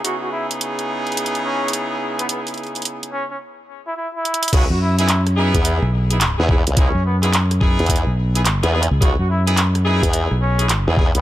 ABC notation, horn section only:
X:1
M:4/4
L:1/16
Q:"Swing 16ths" 1/4=107
K:C#m
V:1 name="Horn section"
[C,B,DEG]16- | [C,B,DEG]8 z8 | [B,DEG] z2 [B,DEG] z2 [B,DEG]4 z [B,DEG] z [B,DEG] [B,DEG] z | [B,DEG] z2 [B,DEG] z2 [B,DEG]4 z [B,DEG] z [B,DEG] [B,DEG] z |
[B,DEG] z2 [B,DEG] z2 [B,DEG]4 z [B,DEG] z [B,DEG] [B,DEG] z |]